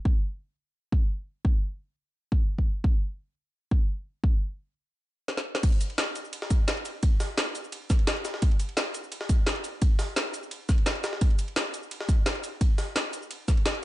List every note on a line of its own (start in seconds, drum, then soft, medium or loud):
0.05 kick loud
0.92 kick loud
1.45 kick loud
2.32 kick medium
2.58 kick medium
2.84 kick loud
3.71 kick medium
4.24 kick loud
5.28 snare medium
5.37 snare medium
5.55 snare medium
5.63 kick loud
5.63 closed hi-hat loud
5.63 crash loud
5.63 ride medium
5.72 ride soft
5.81 closed hi-hat medium
5.81 ride medium
5.81 shaker medium
5.90 ride soft
5.98 snare loud
5.98 closed hi-hat loud
5.98 ride medium
6.15 closed hi-hat medium
6.15 ride medium
6.15 shaker medium
6.25 shaker soft
6.33 closed hi-hat loud
6.33 ride medium
6.42 snare medium
6.50 kick loud
6.50 closed hi-hat medium
6.50 ride medium
6.50 shaker medium
6.68 snare loud
6.68 closed hi-hat loud
6.68 ride medium
6.77 ride soft
6.85 closed hi-hat medium
6.85 ride medium
6.85 shaker medium
7.03 kick loud
7.03 closed hi-hat loud
7.03 ride medium
7.20 snare medium
7.20 closed hi-hat medium
7.20 open hi-hat medium
7.20 shaker medium
7.38 snare loud
7.38 closed hi-hat loud
7.38 ride medium
7.55 closed hi-hat medium
7.55 ride medium
7.55 shaker medium
7.64 shaker soft
7.72 closed hi-hat loud
7.72 ride medium
7.90 kick loud
7.90 snare soft
7.90 closed hi-hat medium
7.90 ride medium
7.90 shaker medium
7.99 ride soft
8.07 snare loud
8.07 closed hi-hat loud
8.07 ride medium
8.17 ride soft
8.25 snare medium
8.25 closed hi-hat medium
8.25 ride medium
8.25 shaker medium
8.34 snare medium
8.42 kick loud
8.42 closed hi-hat loud
8.42 ride medium
8.51 ride soft
8.59 closed hi-hat medium
8.59 ride medium
8.59 shaker medium
8.69 ride soft
8.77 snare loud
8.77 closed hi-hat loud
8.77 ride medium
8.94 closed hi-hat medium
8.94 ride medium
8.94 shaker medium
9.04 shaker soft
9.12 closed hi-hat loud
9.12 ride medium
9.21 snare medium
9.29 kick loud
9.29 closed hi-hat medium
9.29 ride medium
9.29 shaker medium
9.47 snare loud
9.47 closed hi-hat medium
9.47 ride medium
9.56 ride soft
9.64 closed hi-hat medium
9.64 ride medium
9.64 shaker medium
9.82 kick loud
9.82 closed hi-hat medium
9.82 ride medium
9.99 snare medium
9.99 closed hi-hat medium
9.99 open hi-hat medium
9.99 shaker medium
10.16 snare loud
10.16 closed hi-hat medium
10.16 ride medium
10.34 closed hi-hat medium
10.34 ride medium
10.34 shaker medium
10.43 shaker soft
10.51 closed hi-hat medium
10.51 ride medium
10.69 kick loud
10.69 snare soft
10.69 closed hi-hat medium
10.69 ride medium
10.69 shaker medium
10.78 ride soft
10.86 snare loud
10.86 closed hi-hat medium
10.86 ride medium
10.95 ride soft
11.04 snare loud
11.04 closed hi-hat medium
11.04 ride medium
11.04 shaker medium
11.13 snare soft
11.21 kick loud
11.21 closed hi-hat medium
11.21 ride medium
11.30 ride soft
11.39 closed hi-hat medium
11.39 ride medium
11.39 shaker medium
11.48 ride soft
11.56 snare loud
11.56 closed hi-hat medium
11.56 ride medium
11.74 closed hi-hat medium
11.74 ride medium
11.74 shaker medium
11.83 shaker soft
11.91 closed hi-hat medium
11.91 ride medium
12.01 snare medium
12.09 kick loud
12.09 closed hi-hat medium
12.09 ride medium
12.09 shaker medium
12.26 snare loud
12.26 closed hi-hat medium
12.26 ride medium
12.35 ride soft
12.44 closed hi-hat medium
12.44 ride medium
12.44 shaker medium
12.61 kick loud
12.61 closed hi-hat medium
12.61 ride medium
12.78 snare soft
12.78 closed hi-hat medium
12.78 open hi-hat medium
12.78 shaker medium
12.96 snare loud
12.96 closed hi-hat medium
12.96 ride medium
13.13 closed hi-hat medium
13.13 ride medium
13.13 shaker medium
13.22 shaker soft
13.31 closed hi-hat medium
13.31 ride medium
13.48 kick loud
13.48 snare soft
13.48 closed hi-hat medium
13.48 ride medium
13.48 shaker medium
13.57 ride soft
13.66 snare loud
13.66 closed hi-hat medium
13.66 ride medium
13.75 ride soft